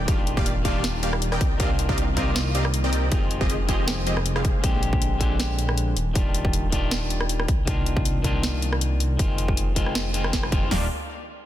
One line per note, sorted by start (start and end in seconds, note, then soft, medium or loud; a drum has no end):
0.00 1.39 D#1 medium
0.06 0.62 D#3 medium
0.06 0.18 D#3 medium
0.06 0.62 G3 medium
0.06 0.18 A#3 medium
0.06 0.63 D4 medium
0.06 0.64 F4 medium
0.06 0.18 G4 medium
0.06 0.18 D5 medium
0.06 0.18 F5 medium
0.06 kick loud
0.06 closed hi-hat medium
0.27 closed hi-hat medium
0.37 0.52 D#3 medium
0.37 0.52 A#3 medium
0.37 0.52 G4 medium
0.37 0.52 D5 medium
0.37 0.52 F5 medium
0.37 kick loud
0.46 closed hi-hat medium
0.63 1.39 D#3 medium
0.63 1.01 D#3 medium
0.63 1.39 G3 medium
0.63 1.01 A#3 medium
0.63 1.40 D4 medium
0.63 1.41 F4 medium
0.63 1.01 G4 medium
0.63 1.01 D5 medium
0.63 1.01 F5 medium
0.63 kick medium
0.63 closed hi-hat medium
0.84 snare loud
0.84 closed hi-hat medium
1.03 1.13 D#3 loud
1.03 1.13 A#3 medium
1.03 1.13 G4 medium
1.03 1.13 D5 medium
1.03 1.13 F5 loud
1.03 closed hi-hat medium
1.13 cross-stick medium
1.22 closed hi-hat medium
1.32 1.58 C4 medium
1.32 1.58 G4 medium
1.32 1.58 A#4 medium
1.32 1.58 D5 medium
1.32 1.58 D#5 medium
1.32 1.58 G5 medium
1.32 cross-stick medium
1.41 3.10 C2 medium
1.41 kick loud
1.41 closed hi-hat medium
1.58 2.14 D#3 medium
1.58 2.14 A#3 medium
1.58 1.70 C4 medium
1.58 2.15 D4 medium
1.58 1.70 G4 medium
1.58 1.70 A#4 medium
1.58 1.70 D5 medium
1.58 1.70 D#5 medium
1.58 1.70 F5 loud
1.58 kick loud
1.58 closed hi-hat medium
1.62 2.16 F4 medium
1.79 closed hi-hat medium
1.89 2.04 C4 medium
1.89 2.04 G4 medium
1.89 2.04 A#4 medium
1.89 2.04 D5 medium
1.89 2.04 D#5 medium
1.89 2.04 F5 medium
1.89 kick loud
1.98 closed hi-hat medium
2.15 3.09 D#3 medium
2.15 3.09 A#3 medium
2.15 2.53 C4 medium
2.15 2.53 G4 medium
2.15 2.53 A#4 medium
2.15 2.53 D5 medium
2.15 2.53 D#5 medium
2.15 2.53 F5 medium
2.15 kick medium
2.15 closed hi-hat medium
2.19 3.11 F4 loud
2.36 snare loud
2.36 closed hi-hat medium
2.55 2.65 C4 medium
2.55 2.65 G4 medium
2.55 2.65 A#4 medium
2.55 2.65 D5 medium
2.55 2.65 D#5 medium
2.55 2.65 F5 loud
2.55 closed hi-hat medium
2.65 cross-stick medium
2.74 closed hi-hat medium
2.84 3.10 C4 medium
2.84 3.10 G4 medium
2.84 3.10 A#4 medium
2.84 3.10 D5 medium
2.84 3.10 D#5 medium
2.84 3.10 G5 medium
2.93 closed hi-hat medium
3.10 4.62 F1 medium
3.10 3.66 D#3 medium
3.10 3.22 F3 medium
3.10 3.66 G#3 medium
3.10 3.22 C4 medium
3.10 3.67 C4 medium
3.10 3.68 F4 medium
3.10 3.22 G4 medium
3.10 3.22 G#4 medium
3.10 3.22 D#5 medium
3.10 kick loud
3.10 closed hi-hat medium
3.31 closed hi-hat medium
3.41 3.56 F3 medium
3.41 3.56 C4 medium
3.41 3.56 G4 medium
3.41 3.56 G#4 medium
3.41 3.56 D#5 medium
3.41 kick loud
3.50 closed hi-hat medium
3.67 4.61 D#3 medium
3.67 4.05 F3 medium
3.67 4.61 G#3 medium
3.67 4.05 C4 medium
3.67 4.62 C4 medium
3.67 4.05 G4 medium
3.67 4.05 G#4 medium
3.67 4.05 D#5 medium
3.67 kick medium
3.67 closed hi-hat medium
3.71 4.63 F4 medium
3.88 snare loud
3.88 closed hi-hat medium
4.07 4.17 F3 medium
4.07 4.17 C4 medium
4.07 4.17 G4 medium
4.07 4.17 G#4 medium
4.07 4.17 D#5 loud
4.07 closed hi-hat medium
4.17 cross-stick medium
4.26 closed hi-hat medium
4.36 4.62 F3 medium
4.36 4.62 C4 medium
4.36 4.62 G4 medium
4.36 4.62 G#4 medium
4.36 4.62 F5 medium
4.36 cross-stick medium
4.45 kick loud
4.45 closed hi-hat medium
4.62 5.95 A#1 medium
4.62 5.17 D3 medium
4.62 5.18 G#3 medium
4.62 5.19 C4 medium
4.62 kick loud
4.62 closed hi-hat medium
4.66 5.19 G4 medium
4.83 closed hi-hat medium
4.93 kick loud
5.02 closed hi-hat medium
5.19 5.94 D3 medium
5.19 5.95 G#3 medium
5.19 5.96 C4 medium
5.19 5.96 G4 medium
5.19 kick medium
5.19 closed hi-hat medium
5.40 snare loud
5.40 closed hi-hat medium
5.59 closed hi-hat medium
5.69 cross-stick medium
5.78 closed hi-hat medium
5.96 7.47 D#1 medium
5.96 closed hi-hat medium
6.13 6.69 D#3 medium
6.13 6.70 G3 medium
6.13 6.71 D4 medium
6.13 6.71 F4 medium
6.13 kick loud
6.13 closed hi-hat medium
6.34 closed hi-hat medium
6.45 kick loud
6.53 closed hi-hat medium
6.70 7.46 D#3 medium
6.70 7.47 G3 medium
6.70 7.48 D4 medium
6.70 kick medium
6.70 closed hi-hat medium
6.74 7.48 F4 medium
6.91 snare loud
6.91 closed hi-hat medium
7.10 closed hi-hat medium
7.21 cross-stick medium
7.29 closed hi-hat medium
7.40 cross-stick medium
7.48 9.18 C2 medium
7.48 kick medium
7.48 closed hi-hat medium
7.65 8.21 D#3 medium
7.65 8.22 A#3 medium
7.65 8.23 D4 medium
7.65 8.23 F4 medium
7.65 kick loud
7.65 closed hi-hat medium
7.86 closed hi-hat medium
7.97 kick loud
8.05 closed hi-hat medium
8.22 9.16 D#3 medium
8.22 9.17 A#3 medium
8.22 9.17 D4 medium
8.22 9.18 F4 medium
8.22 kick medium
8.22 closed hi-hat medium
8.43 snare loud
8.43 closed hi-hat medium
8.62 closed hi-hat medium
8.73 cross-stick medium
8.81 closed hi-hat medium
9.00 closed hi-hat medium
9.17 10.69 F1 medium
9.17 9.73 D#3 medium
9.17 9.74 G#3 medium
9.17 9.74 C4 medium
9.17 9.75 F4 medium
9.17 kick loud
9.17 closed hi-hat medium
9.38 closed hi-hat medium
9.48 kick loud
9.57 closed hi-hat medium
9.75 10.12 D#3 medium
9.75 10.12 G#3 medium
9.75 10.13 C4 medium
9.75 10.13 F4 medium
9.75 kick medium
9.75 closed hi-hat medium
9.86 cross-stick medium
9.95 snare loud
9.95 closed hi-hat medium
10.13 10.50 D#3 medium
10.13 10.50 G#3 medium
10.13 10.50 C4 medium
10.13 10.51 F4 loud
10.13 closed hi-hat medium
10.24 cross-stick medium
10.33 kick medium
10.33 snare medium
10.33 closed hi-hat medium
10.43 cross-stick medium
10.51 10.67 D#3 medium
10.51 10.69 G#3 medium
10.51 10.69 C4 medium
10.51 10.70 F4 medium
10.51 kick loud
10.51 closed hi-hat medium
10.68 10.89 D#1 medium
10.68 10.84 D#3 medium
10.68 10.86 D#3 medium
10.68 10.85 G3 medium
10.68 10.86 A#3 medium
10.68 10.86 G4 medium
10.68 10.86 D5 medium
10.68 10.86 F5 medium
10.68 snare loud
10.68 floor tom loud
10.68 open hi-hat medium
10.72 10.86 D4 medium
10.72 10.87 F4 medium